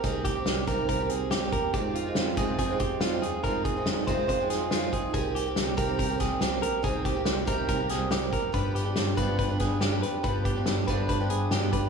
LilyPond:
<<
  \new Staff \with { instrumentName = "Clean electric guitar" } { \time 4/4 \key f \dorian \tempo 4 = 141 aes'8 g'4 bes'8 bes'8 aes'8 g'8 bes'8 | g'8 f'4 aes'8 aes'8 g'8 f'8 aes'8 | bes'8 aes'4 c''8 c''8 aes'8 f'8 aes'8 | aes'8 g'4 bes'8 bes'8 aes'8 g'8 bes'8 |
aes'8 g'4 bes'8 bes'8 aes'8 g'8 bes'8 | b'8 g'4 b'8 b'8 aes'8 g'8 b'8 | b'8 g'4 b'8 b'8 aes'8 g'8 b'8 | }
  \new Staff \with { instrumentName = "Twelve-string acoustic guitar" } { \time 4/4 \key f \dorian <ees bes c' g'>8. <bes c' g'>8. <c ees bes c' g'>8. <bes c' g'>4 <bes c' g'>8. | <ees aes c' f'>8. <ees aes c' f'>8. <f, c ees aes c' f'>8. <ees aes c' f'>4 <ees aes c' f'>8. | <ees aes c' f'>8. <ees aes c' f'>8. <f, c ees aes c' f'>8. <ees aes c' f'>4 <ees aes c' f'>8. | <ees bes c' g'>8. <bes c' g'>8. <c ees bes c' g'>8. <bes c' g'>4 <bes c' g'>8. |
<ees bes c' g'>8. <bes c' g'>8. <c ees bes c' g'>8. <bes c' g'>4 <bes c' g'>8. | <f b d' g'>8. <f b d' g'>8. <g, d f b d' g'>8. <f b d' g'>4 <f b d' g'>8. | <f b d' g'>8. <f b d' g'>8. <g, d f b d' g'>8. <f b d' g'>4 <f b d' g'>8. | }
  \new Staff \with { instrumentName = "Tine electric piano" } { \clef bass \time 4/4 \key f \dorian c,4 c,8 c,8 c,8 c,8 c,8 ees,8 | f,4 f,8 f,8 f,8 f,8 f,8 ees,8 | f,4 f,8 f,8 f,8 f,8 f,8 bes,,8 | c,4 c,8 c,8 c,8 c,8 c,8 bes,,8 |
c,4 c,8 c,8 c,8 c,8 c,8 f,8 | g,4 g,8 g,8 g,8 g,8 g,8 f,8 | g,4 g,8 g,8 g,8 g,8 g,8 g,8 | }
  \new DrumStaff \with { instrumentName = "Drums" } \drummode { \time 4/4 <hh bd>8 <hh bd>8 <hh sn>8 <hh bd>8 <hh bd>8 hh8 <hh sn>8 <hh bd>8 | <hh bd>8 hh8 <hh sn>8 <hh bd>8 <hh bd>8 <hh bd>8 <hh sn>8 hh8 | <hh bd>8 <hh bd>8 <hh sn>8 <hh bd>8 <hh bd>8 <hh sn>8 <hh sn>8 <hh bd>8 | <hh bd>8 hh8 <hh sn>8 <hh bd>8 <hh bd>8 <hh bd sn>8 <hh sn>8 hh8 |
<hh bd>8 <hh bd>8 <hh sn>8 <hh bd>8 <hh bd>8 <hh sn>8 <hh sn>8 <hh bd>8 | <hh bd>8 hh8 <hh sn>8 <hh bd>8 <hh bd>8 <hh bd sn>8 <hh sn>8 hh8 | <hh bd>8 <hh bd>8 <hh sn>8 <hh bd>8 <hh bd>8 hh8 <hh sn>8 <hh bd>8 | }
>>